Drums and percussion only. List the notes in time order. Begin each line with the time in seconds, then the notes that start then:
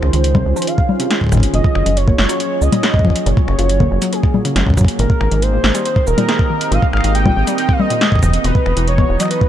0.03 finger snap
0.13 closed hi-hat
0.24 closed hi-hat
0.35 kick, low conga
0.56 cabasa
0.62 closed hi-hat
0.67 closed hi-hat
0.78 kick
0.89 low conga
1.00 closed hi-hat
1.11 snare, closed hi-hat
1.21 kick
1.24 kick
1.27 kick
1.29 kick
1.32 finger snap, kick, cabasa
1.35 kick
1.37 kick
1.40 kick, closed hi-hat
1.54 closed hi-hat
1.64 kick
1.75 finger snap
1.86 closed hi-hat
1.97 closed hi-hat
2.08 kick
2.18 snare
2.29 finger snap, closed hi-hat, cabasa
2.40 closed hi-hat
2.62 cabasa
2.72 closed hi-hat, low conga
2.83 snare, closed hi-hat
2.94 kick
2.99 kick
3.05 kick
3.10 kick
3.16 closed hi-hat
3.26 closed hi-hat
3.37 kick
3.48 finger snap
3.59 closed hi-hat
3.69 closed hi-hat
3.80 kick, low conga
4.02 closed hi-hat, cabasa
4.13 closed hi-hat
4.23 finger snap, kick
4.34 low conga
4.45 closed hi-hat
4.56 snare, closed hi-hat
4.67 kick
4.70 kick
4.74 kick
4.77 finger snap, kick, cabasa
4.81 kick
4.85 kick, closed hi-hat
4.99 closed hi-hat
5.10 kick
5.21 finger snap
5.32 closed hi-hat
5.42 closed hi-hat
5.64 snare
5.75 finger snap, closed hi-hat, cabasa
5.85 closed hi-hat
5.96 kick
6.07 cabasa
6.18 closed hi-hat, low conga
6.29 snare, closed hi-hat
6.39 kick
6.61 closed hi-hat
6.72 closed hi-hat
6.82 kick
6.93 finger snap
6.97 finger snap
7.01 finger snap, closed hi-hat
7.15 closed hi-hat
7.26 kick, low conga
7.47 closed hi-hat, cabasa
7.58 closed hi-hat
7.69 finger snap, kick
7.80 low conga
7.90 closed hi-hat
8.01 snare, closed hi-hat
8.12 kick
8.16 kick
8.19 finger snap, kick, cabasa
8.23 kick
8.26 kick
8.30 kick, closed hi-hat
8.44 closed hi-hat
8.55 kick
8.66 finger snap
8.77 closed hi-hat
8.88 closed hi-hat
8.98 kick
9.20 finger snap, closed hi-hat, cabasa
9.23 finger snap
9.25 finger snap
9.31 closed hi-hat
9.41 kick